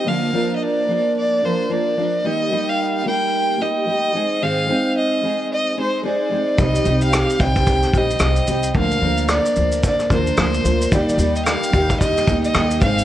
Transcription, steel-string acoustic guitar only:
X:1
M:4/4
L:1/8
Q:"Swing 16ths" 1/4=110
K:Eb
V:1 name="Steel-string acoustic guitar"
[D,F,B,DB] [F,B,DB]2 [F,B,DB]2 [F,B,DB] [F,B,DB] [F,B,DB] | [E,G,B,EG] [G,B,EG]2 [G,B,EG]2 [G,B,EG] [G,B,EG] [A,CEA] | [A,,E,A,CEA] [A,CEA]2 [A,CEA]2 [A,CEA] [A,CEA] [A,CEA] | [C,G,CEG] [G,CEG]2 [G,CEG]2 [G,CEG] [G,CEG] [G,CEG] |
[D,F,B,DB] [F,B,DB]2 [F,B,DB]2 [F,B,DB] [F,B,DB] [F,B,DB] | [E,G,B,EG] [G,B,EG]2 [G,B,EG]2 [G,B,EG] [G,B,EG] [A,CEA] |]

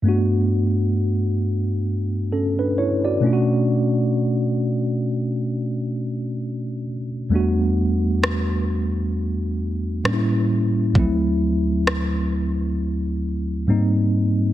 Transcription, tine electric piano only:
X:1
M:4/4
L:1/16
Q:"Swing 16ths" 1/4=66
K:Glyd
V:1 name="Tine electric piano"
z8 z2 [CA] [DB] [Ec] [Fd]2 z | z16 | z16 | z16 |]
V:2 name="Tine electric piano"
[G,,A,B,DF]12- [G,,A,B,DF]2 [B,,A,CD^EF]2- | [B,,A,CD^EF]12- [B,,A,CDEF]2 z2 | [E,,G,A,B,DF]12 [A,,G,_B,CDE]4 | [D,,^E,F,A,=C=E]12 [^G,,=G,^A,^B,^D]4 |]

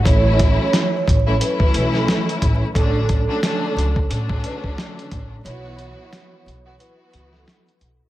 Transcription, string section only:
X:1
M:4/4
L:1/16
Q:"Swing 16ths" 1/4=89
K:Dlyd
V:1 name="String section"
[E,F,A,CE]6 z [E,F,A,CE] [E,F,A,CE]6- [E,F,A,CE] z | [D,F,A,CD]3 [D,F,A,CD] [D,F,A,CD]4 [D,F,A,CD]6- [D,F,A,CD] z | [E,F,B,EF]6 z [E,F,B,EF] [E,F,B,EF]6- [E,F,B,EF] z |]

